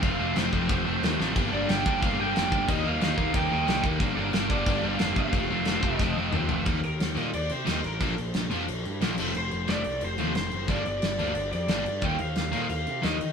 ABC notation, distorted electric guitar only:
X:1
M:4/4
L:1/8
Q:1/4=180
K:Eblyd
V:1 name="Distorted electric guitar" clef=bass
[F,,C,F,A,C] [F,,C,F,A,C] [F,,C,F,A,C] [F,,C,F,A,C] [F,,C,F,A,C] [F,,C,F,A,C] [F,,C,F,A,C] [F,,C,F,A,C] | [G,,D,G,B,D] [G,,D,G,B,D] [G,,D,G,B,D] [G,,D,G,B,D] [G,,D,G,B,D] [G,,D,G,B,D] [G,,D,G,B,D] [G,,D,G,B,D] | [E,G,B,E] [E,G,B,E] [E,G,B,E] [E,G,B,E] [E,G,B,E] [E,G,B,E] [E,G,B,E] [E,G,B,E] | [G,,D,G,B,D] [G,,D,G,B,D] [G,,D,G,B,D] [G,,D,G,B,D] [G,,D,G,B,D] [G,,D,G,B,D] [G,,D,G,B,D] [G,,D,G,B,D] |
[F,,C,F,A,C] [F,,C,F,A,C] [F,,C,F,A,C] [F,,C,F,A,C] [F,,C,F,A,C] [F,,C,F,A,C] [F,,C,F,A,C] [F,,C,F,A,C] | [E,G,B,E] z2 [E,G,B,E] z2 [E,G,B,E] z | [B,,F,B,D] z2 [B,,F,B,D] z2 [B,,F,B,D] [F,,C,F,A,C] | z2 [F,,C,F,A,C] z2 [F,,C,F,A,C] z2 |
[G,,D,G,B,D] z2 [G,,D,G,B,D] z2 [G,,D,G,B,D] z | [E,G,B,E] z2 [E,G,B,E] z2 [E,G,B,E] z |]